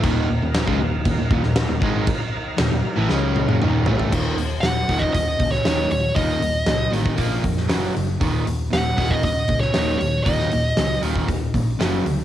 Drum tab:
CC |x---x---x---x---|x---x-----------|x---------------|----------------|
HH |----------------|----------------|--o-o-o-o-o-o-o-|o-o-o-o-o-o-o-o-|
SD |----o------oo---|----o---o-------|----o------oo---|----o------oo---|
T1 |----------------|----------oo----|----------------|----------------|
T2 |----------------|------------o---|----------------|----------------|
FT |----------------|--------------oo|----------------|----------------|
BD |o----o--o-o---o-|o---------------|o-----ooo-o-----|o------oo-o-----|

CC |----------------|----------------|
HH |o-o-o-o-o-o-o-o-|o-o-o-o-o-o-o-o-|
SD |----o------oo---|-o--o-------o---|
T1 |----------------|----------------|
T2 |----------------|----------------|
FT |----------------|----------------|
BD |o-----ooo-o-----|o------oo-o-----|